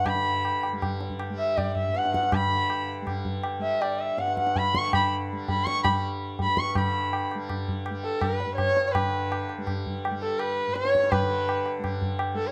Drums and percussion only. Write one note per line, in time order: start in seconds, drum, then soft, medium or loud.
0.06 tabla na loud
0.06 tabla ge medium
0.45 tabla na medium
0.63 tabla na medium
0.82 tabla na medium
0.82 tabla ge medium
1.00 tabla te medium
1.10 tabla ge medium
1.19 tabla na medium
1.58 tabla na medium
1.58 tabla ge medium
1.76 tabla ge soft
1.95 tabla te medium
2.05 tabla te medium
2.14 tabla ke medium
2.23 tabla te medium
2.32 tabla na loud
2.32 tabla ge medium
2.70 tabla na medium
3.07 tabla na medium
3.07 tabla ge medium
3.25 tabla ge medium
3.43 tabla na medium
3.82 tabla na medium
4.18 tabla te medium
4.28 tabla te medium
4.37 tabla ke medium
4.47 tabla te medium
4.56 tabla tin medium
4.56 tabla ge medium
4.75 tabla ke medium
4.93 tabla na medium
4.93 tabla ge medium
5.48 tabla tin medium
5.48 tabla ge medium
5.67 tabla ke medium
5.85 tabla na medium
5.85 tabla ge medium
6.39 tabla tin medium
6.39 tabla ge medium
6.57 tabla ke medium
6.75 tabla na medium
6.75 tabla ge medium
7.13 tabla na medium
7.31 tabla na medium
7.49 tabla na medium
7.49 tabla ge medium
7.68 tabla ge soft
7.86 tabla na medium
8.21 tabla na medium
8.21 tabla ge medium
8.40 tabla te medium
8.58 tabla na medium
8.58 tabla ge medium
8.77 tabla te medium
8.95 tabla na medium
8.95 tabla ge medium
9.32 tabla na medium
9.49 tabla na medium
9.67 tabla na medium
9.67 tabla ge medium
9.86 tabla ge medium
10.05 tabla na medium
10.39 tabla na medium
10.76 tabla te medium
10.85 tabla te medium
10.95 tabla ke medium
11.04 tabla te medium
11.12 tabla na medium
11.12 tabla ge medium
11.49 tabla na medium
11.66 tabla na medium
11.84 tabla na medium
11.84 tabla ge medium
12.02 tabla ge soft
12.19 tabla na medium